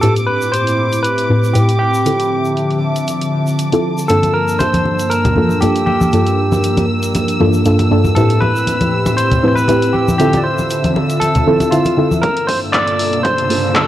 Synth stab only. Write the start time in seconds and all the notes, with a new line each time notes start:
0.02 A2 C4 E4 G4 B4
1.29 A2 C4 E4 G4 B4
1.55 A2 C4 E4 G4 B4
2.06 D3 C4 E4 F4 A4
3.72 D3 C4 E4 F4 A4
4.09 G2 A#3 D4 F4 A4
5.36 G2 A#3 D4 F4 A4
5.62 G2 A#3 D4 F4 A4
6.12 G2 A#3 D4 F4 A4
7.40 G2 A#3 D4 F4 A4
7.65 G2 A#3 D4 F4 A4
7.90 G2 A#3 D4 F4 A4
8.16 A2 C4 E4 G4 B4
9.43 A2 C4 E4 G4 B4
9.68 A2 C4 E4 G4 B4
10.19 D3 C4 E4 F4 A4
11.46 D3 C4 E4 F4 A4
11.72 D3 C4 E4 F4 A4
11.97 D3 C4 E4 F4 A4
12.23 A#3 F4 A4
13.50 A#3 F4 A4
13.75 A#3 F4 A4